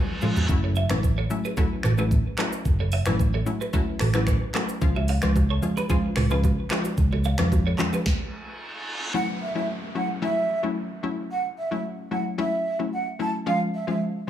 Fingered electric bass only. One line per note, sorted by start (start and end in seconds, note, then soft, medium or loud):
0.49 0.84 F#1 loud
0.90 1.24 A1 medium
1.84 2.19 A1 medium
2.65 3.00 F#1 loud
3.07 3.40 A1 medium
4.00 4.35 A1 loud
4.82 5.16 C#2 loud
5.23 5.56 C#2 medium
6.17 6.51 C#2 medium
6.98 7.32 C#2 loud
7.39 7.72 F2 loud